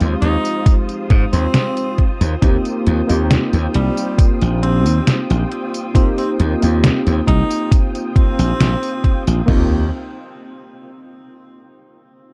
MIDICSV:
0, 0, Header, 1, 7, 480
1, 0, Start_track
1, 0, Key_signature, -3, "major"
1, 0, Tempo, 882353
1, 1318, Time_signature, 4, 2, 24, 8
1, 6709, End_track
2, 0, Start_track
2, 0, Title_t, "String machine"
2, 0, Program_c, 0, 50
2, 0, Note_on_c, 0, 65, 81
2, 0, Note_on_c, 0, 72, 75
2, 0, Note_on_c, 0, 87, 85
2, 1071, Note_on_c, 0, 79, 72
2, 5133, Note_off_c, 0, 79, 0
2, 5135, Note_off_c, 0, 65, 0
2, 5135, Note_off_c, 0, 87, 0
2, 5139, Note_off_c, 0, 72, 0
2, 6709, End_track
3, 0, Start_track
3, 0, Title_t, "Synth keys"
3, 0, Program_c, 1, 88
3, 0, Control_c, 1, 64, 127
3, 0, Note_on_c, 1, 56, 80
3, 0, Note_on_c, 1, 60, 74
3, 0, Note_on_c, 1, 63, 75
3, 0, Note_on_c, 1, 65, 74
3, 0, Note_on_c, 1, 67, 89
3, 1061, Note_off_c, 1, 56, 0
3, 1062, Note_off_c, 1, 60, 0
3, 1064, Note_off_c, 1, 63, 0
3, 1066, Note_off_c, 1, 65, 0
3, 1069, Note_off_c, 1, 67, 0
3, 1085, Control_c, 1, 64, 0
3, 1179, Control_c, 1, 64, 127
3, 1314, Note_on_c, 1, 58, 86
3, 1316, Note_on_c, 1, 60, 81
3, 1318, Note_on_c, 1, 63, 77
3, 1320, Note_on_c, 1, 65, 80
3, 1322, Note_on_c, 1, 67, 94
3, 1650, Note_off_c, 1, 58, 0
3, 1651, Note_off_c, 1, 60, 0
3, 1652, Note_off_c, 1, 63, 0
3, 1653, Note_off_c, 1, 65, 0
3, 1654, Note_off_c, 1, 67, 0
3, 1670, Note_on_c, 1, 58, 96
3, 1674, Note_on_c, 1, 60, 90
3, 1679, Note_on_c, 1, 63, 92
3, 1682, Note_on_c, 1, 65, 91
3, 1687, Note_on_c, 1, 67, 107
3, 3204, Note_off_c, 1, 58, 0
3, 3206, Note_off_c, 1, 60, 0
3, 3208, Note_off_c, 1, 63, 0
3, 3210, Note_off_c, 1, 65, 0
3, 3213, Note_off_c, 1, 67, 0
3, 3231, Note_on_c, 1, 58, 98
3, 3233, Note_on_c, 1, 60, 87
3, 3235, Note_on_c, 1, 63, 89
3, 3237, Note_on_c, 1, 65, 88
3, 3239, Note_on_c, 1, 67, 108
3, 3569, Note_off_c, 1, 58, 0
3, 3569, Note_off_c, 1, 60, 0
3, 3571, Note_off_c, 1, 63, 0
3, 3571, Note_off_c, 1, 65, 0
3, 3573, Note_off_c, 1, 67, 0
3, 3592, Note_on_c, 1, 58, 80
3, 3595, Note_on_c, 1, 60, 73
3, 3599, Note_on_c, 1, 63, 74
3, 3603, Note_on_c, 1, 65, 74
3, 3607, Note_on_c, 1, 67, 89
3, 5125, Note_off_c, 1, 58, 0
3, 5127, Note_off_c, 1, 60, 0
3, 5129, Note_off_c, 1, 63, 0
3, 5131, Note_off_c, 1, 65, 0
3, 5132, Note_off_c, 1, 67, 0
3, 5144, Note_on_c, 1, 58, 87
3, 5151, Note_on_c, 1, 60, 80
3, 5157, Note_on_c, 1, 63, 79
3, 5163, Note_on_c, 1, 65, 80
3, 5165, Control_c, 1, 64, 0
3, 5170, Note_on_c, 1, 67, 93
3, 5331, Note_off_c, 1, 58, 0
3, 5334, Note_off_c, 1, 60, 0
3, 5337, Note_off_c, 1, 63, 0
3, 5341, Note_off_c, 1, 65, 0
3, 5344, Note_off_c, 1, 67, 0
3, 6709, End_track
4, 0, Start_track
4, 0, Title_t, "Tenor saxophone"
4, 0, Program_c, 2, 66
4, 118, Note_on_c, 2, 63, 94
4, 407, Note_off_c, 2, 63, 0
4, 722, Note_on_c, 2, 60, 97
4, 1128, Note_off_c, 2, 60, 0
4, 2038, Note_on_c, 2, 55, 97
4, 2328, Note_off_c, 2, 55, 0
4, 2517, Note_on_c, 2, 60, 94
4, 2807, Note_off_c, 2, 60, 0
4, 3238, Note_on_c, 2, 60, 92
4, 3317, Note_off_c, 2, 60, 0
4, 3360, Note_on_c, 2, 60, 79
4, 3436, Note_off_c, 2, 60, 0
4, 3958, Note_on_c, 2, 63, 97
4, 4247, Note_off_c, 2, 63, 0
4, 4438, Note_on_c, 2, 60, 98
4, 5111, Note_off_c, 2, 60, 0
4, 6709, End_track
5, 0, Start_track
5, 0, Title_t, "Slap bass"
5, 0, Program_c, 3, 36
5, 5, Note_on_c, 3, 39, 85
5, 74, Note_off_c, 3, 39, 0
5, 120, Note_on_c, 3, 39, 92
5, 194, Note_off_c, 3, 39, 0
5, 601, Note_on_c, 3, 44, 105
5, 675, Note_off_c, 3, 44, 0
5, 724, Note_on_c, 3, 39, 97
5, 793, Note_off_c, 3, 39, 0
5, 1202, Note_on_c, 3, 39, 100
5, 1273, Note_off_c, 3, 39, 0
5, 1319, Note_on_c, 3, 39, 101
5, 1394, Note_off_c, 3, 39, 0
5, 1560, Note_on_c, 3, 39, 103
5, 1635, Note_off_c, 3, 39, 0
5, 1686, Note_on_c, 3, 39, 90
5, 1827, Note_off_c, 3, 39, 0
5, 1922, Note_on_c, 3, 39, 87
5, 1993, Note_off_c, 3, 39, 0
5, 2040, Note_on_c, 3, 36, 92
5, 2114, Note_off_c, 3, 36, 0
5, 2405, Note_on_c, 3, 34, 88
5, 2644, Note_off_c, 3, 34, 0
5, 2644, Note_on_c, 3, 39, 97
5, 2714, Note_off_c, 3, 39, 0
5, 2886, Note_on_c, 3, 34, 102
5, 2955, Note_off_c, 3, 34, 0
5, 3480, Note_on_c, 3, 39, 101
5, 3555, Note_off_c, 3, 39, 0
5, 3607, Note_on_c, 3, 39, 91
5, 3747, Note_off_c, 3, 39, 0
5, 3845, Note_on_c, 3, 39, 88
5, 3914, Note_off_c, 3, 39, 0
5, 3958, Note_on_c, 3, 36, 90
5, 4034, Note_off_c, 3, 36, 0
5, 4564, Note_on_c, 3, 34, 90
5, 4634, Note_off_c, 3, 34, 0
5, 4680, Note_on_c, 3, 34, 98
5, 4754, Note_off_c, 3, 34, 0
5, 5045, Note_on_c, 3, 34, 89
5, 5114, Note_off_c, 3, 34, 0
5, 5160, Note_on_c, 3, 39, 97
5, 5382, Note_off_c, 3, 39, 0
5, 6709, End_track
6, 0, Start_track
6, 0, Title_t, "Muted slap bass strokes"
6, 2277, Note_on_c, 9, 29, 44
6, 2331, Note_off_c, 9, 29, 0
6, 6709, End_track
7, 0, Start_track
7, 0, Title_t, "Drums"
7, 2, Note_on_c, 9, 42, 37
7, 2, Note_on_c, 9, 54, 26
7, 57, Note_off_c, 9, 42, 0
7, 57, Note_off_c, 9, 54, 0
7, 119, Note_on_c, 9, 42, 61
7, 174, Note_off_c, 9, 42, 0
7, 244, Note_on_c, 9, 42, 38
7, 244, Note_on_c, 9, 54, 55
7, 298, Note_off_c, 9, 42, 0
7, 298, Note_off_c, 9, 54, 0
7, 359, Note_on_c, 9, 36, 118
7, 359, Note_on_c, 9, 42, 88
7, 359, Note_on_c, 9, 54, 46
7, 413, Note_off_c, 9, 36, 0
7, 414, Note_off_c, 9, 42, 0
7, 414, Note_off_c, 9, 54, 0
7, 483, Note_on_c, 9, 42, 38
7, 483, Note_on_c, 9, 54, 28
7, 537, Note_off_c, 9, 42, 0
7, 537, Note_off_c, 9, 54, 0
7, 598, Note_on_c, 9, 42, 64
7, 599, Note_on_c, 9, 36, 98
7, 653, Note_off_c, 9, 42, 0
7, 654, Note_off_c, 9, 36, 0
7, 722, Note_on_c, 9, 42, 36
7, 722, Note_on_c, 9, 54, 55
7, 777, Note_off_c, 9, 42, 0
7, 777, Note_off_c, 9, 54, 0
7, 837, Note_on_c, 9, 38, 112
7, 837, Note_on_c, 9, 42, 86
7, 837, Note_on_c, 9, 54, 44
7, 891, Note_off_c, 9, 38, 0
7, 891, Note_off_c, 9, 42, 0
7, 891, Note_off_c, 9, 54, 0
7, 962, Note_on_c, 9, 42, 39
7, 962, Note_on_c, 9, 54, 28
7, 1016, Note_off_c, 9, 42, 0
7, 1016, Note_off_c, 9, 54, 0
7, 1078, Note_on_c, 9, 42, 40
7, 1079, Note_on_c, 9, 36, 58
7, 1133, Note_off_c, 9, 36, 0
7, 1133, Note_off_c, 9, 42, 0
7, 1202, Note_on_c, 9, 42, 39
7, 1202, Note_on_c, 9, 54, 55
7, 1257, Note_off_c, 9, 42, 0
7, 1257, Note_off_c, 9, 54, 0
7, 1318, Note_on_c, 9, 36, 110
7, 1318, Note_on_c, 9, 42, 91
7, 1318, Note_on_c, 9, 54, 47
7, 1372, Note_off_c, 9, 36, 0
7, 1373, Note_off_c, 9, 42, 0
7, 1373, Note_off_c, 9, 54, 0
7, 1443, Note_on_c, 9, 42, 39
7, 1443, Note_on_c, 9, 54, 30
7, 1497, Note_off_c, 9, 42, 0
7, 1497, Note_off_c, 9, 54, 0
7, 1559, Note_on_c, 9, 42, 66
7, 1613, Note_off_c, 9, 42, 0
7, 1683, Note_on_c, 9, 42, 39
7, 1683, Note_on_c, 9, 54, 57
7, 1737, Note_off_c, 9, 42, 0
7, 1737, Note_off_c, 9, 54, 0
7, 1799, Note_on_c, 9, 38, 113
7, 1799, Note_on_c, 9, 42, 91
7, 1799, Note_on_c, 9, 54, 48
7, 1853, Note_off_c, 9, 38, 0
7, 1853, Note_off_c, 9, 42, 0
7, 1853, Note_off_c, 9, 54, 0
7, 1921, Note_on_c, 9, 42, 37
7, 1921, Note_on_c, 9, 54, 28
7, 1976, Note_off_c, 9, 42, 0
7, 1976, Note_off_c, 9, 54, 0
7, 2037, Note_on_c, 9, 42, 63
7, 2091, Note_off_c, 9, 42, 0
7, 2162, Note_on_c, 9, 42, 39
7, 2162, Note_on_c, 9, 54, 58
7, 2216, Note_off_c, 9, 42, 0
7, 2216, Note_off_c, 9, 54, 0
7, 2277, Note_on_c, 9, 36, 115
7, 2278, Note_on_c, 9, 42, 95
7, 2278, Note_on_c, 9, 54, 48
7, 2331, Note_off_c, 9, 36, 0
7, 2333, Note_off_c, 9, 42, 0
7, 2333, Note_off_c, 9, 54, 0
7, 2402, Note_on_c, 9, 42, 39
7, 2402, Note_on_c, 9, 54, 29
7, 2457, Note_off_c, 9, 42, 0
7, 2457, Note_off_c, 9, 54, 0
7, 2520, Note_on_c, 9, 42, 63
7, 2574, Note_off_c, 9, 42, 0
7, 2643, Note_on_c, 9, 42, 37
7, 2643, Note_on_c, 9, 54, 58
7, 2697, Note_off_c, 9, 42, 0
7, 2697, Note_off_c, 9, 54, 0
7, 2759, Note_on_c, 9, 38, 112
7, 2759, Note_on_c, 9, 42, 92
7, 2759, Note_on_c, 9, 54, 47
7, 2814, Note_off_c, 9, 38, 0
7, 2814, Note_off_c, 9, 42, 0
7, 2814, Note_off_c, 9, 54, 0
7, 2885, Note_on_c, 9, 42, 39
7, 2885, Note_on_c, 9, 54, 30
7, 2939, Note_off_c, 9, 42, 0
7, 2939, Note_off_c, 9, 54, 0
7, 3001, Note_on_c, 9, 42, 40
7, 3055, Note_off_c, 9, 42, 0
7, 3123, Note_on_c, 9, 42, 40
7, 3123, Note_on_c, 9, 54, 59
7, 3178, Note_off_c, 9, 42, 0
7, 3178, Note_off_c, 9, 54, 0
7, 3236, Note_on_c, 9, 36, 113
7, 3239, Note_on_c, 9, 42, 92
7, 3239, Note_on_c, 9, 54, 48
7, 3291, Note_off_c, 9, 36, 0
7, 3293, Note_off_c, 9, 42, 0
7, 3293, Note_off_c, 9, 54, 0
7, 3363, Note_on_c, 9, 42, 42
7, 3363, Note_on_c, 9, 54, 30
7, 3417, Note_off_c, 9, 42, 0
7, 3417, Note_off_c, 9, 54, 0
7, 3479, Note_on_c, 9, 42, 70
7, 3534, Note_off_c, 9, 42, 0
7, 3603, Note_on_c, 9, 42, 41
7, 3603, Note_on_c, 9, 54, 58
7, 3657, Note_off_c, 9, 42, 0
7, 3657, Note_off_c, 9, 54, 0
7, 3719, Note_on_c, 9, 38, 117
7, 3719, Note_on_c, 9, 42, 96
7, 3719, Note_on_c, 9, 54, 50
7, 3774, Note_off_c, 9, 38, 0
7, 3774, Note_off_c, 9, 42, 0
7, 3774, Note_off_c, 9, 54, 0
7, 3844, Note_on_c, 9, 42, 40
7, 3844, Note_on_c, 9, 54, 29
7, 3898, Note_off_c, 9, 42, 0
7, 3898, Note_off_c, 9, 54, 0
7, 3957, Note_on_c, 9, 36, 59
7, 3960, Note_on_c, 9, 42, 65
7, 4012, Note_off_c, 9, 36, 0
7, 4014, Note_off_c, 9, 42, 0
7, 4083, Note_on_c, 9, 42, 41
7, 4083, Note_on_c, 9, 54, 58
7, 4138, Note_off_c, 9, 42, 0
7, 4138, Note_off_c, 9, 54, 0
7, 4198, Note_on_c, 9, 36, 116
7, 4200, Note_on_c, 9, 42, 97
7, 4200, Note_on_c, 9, 54, 51
7, 4252, Note_off_c, 9, 36, 0
7, 4254, Note_off_c, 9, 42, 0
7, 4254, Note_off_c, 9, 54, 0
7, 4325, Note_on_c, 9, 42, 41
7, 4325, Note_on_c, 9, 54, 29
7, 4379, Note_off_c, 9, 42, 0
7, 4379, Note_off_c, 9, 54, 0
7, 4438, Note_on_c, 9, 36, 95
7, 4440, Note_on_c, 9, 42, 69
7, 4492, Note_off_c, 9, 36, 0
7, 4494, Note_off_c, 9, 42, 0
7, 4564, Note_on_c, 9, 42, 38
7, 4564, Note_on_c, 9, 54, 58
7, 4619, Note_off_c, 9, 42, 0
7, 4619, Note_off_c, 9, 54, 0
7, 4681, Note_on_c, 9, 38, 115
7, 4681, Note_on_c, 9, 42, 95
7, 4681, Note_on_c, 9, 54, 48
7, 4736, Note_off_c, 9, 38, 0
7, 4736, Note_off_c, 9, 42, 0
7, 4736, Note_off_c, 9, 54, 0
7, 4804, Note_on_c, 9, 42, 41
7, 4804, Note_on_c, 9, 54, 30
7, 4858, Note_off_c, 9, 42, 0
7, 4858, Note_off_c, 9, 54, 0
7, 4918, Note_on_c, 9, 36, 59
7, 4920, Note_on_c, 9, 42, 41
7, 4973, Note_off_c, 9, 36, 0
7, 4974, Note_off_c, 9, 42, 0
7, 5045, Note_on_c, 9, 42, 41
7, 5045, Note_on_c, 9, 54, 60
7, 5099, Note_off_c, 9, 42, 0
7, 5099, Note_off_c, 9, 54, 0
7, 5157, Note_on_c, 9, 43, 103
7, 5157, Note_on_c, 9, 49, 87
7, 5158, Note_on_c, 9, 36, 104
7, 5212, Note_off_c, 9, 43, 0
7, 5212, Note_off_c, 9, 49, 0
7, 5213, Note_off_c, 9, 36, 0
7, 6709, End_track
0, 0, End_of_file